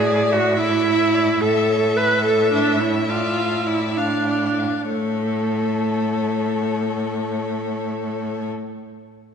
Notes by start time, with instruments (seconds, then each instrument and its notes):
Already playing: cello A2, viola G#4, violin D5
0.07 violin D5
0.32 viola F#4, violin E5
0.59 viola E4, violin D5 E5
0.87 violin E5
1.14 violin D5
1.41 cello A2, viola A4, violin E5
1.69 violin C#5
1.97 viola B4, violin E5
2.24 viola A4, violin C#5
2.52 viola D4, violin E5
2.80 viola E4, violin C#5
3.08 viola F4, violin D5
3.37 violin F5
3.66 viola E4, violin D5
3.90 viola E4
3.97 viola D4, violin F5
4.28 violin D5
4.59 violin F5
4.90 cello A2, viola A3, violin A4 C#5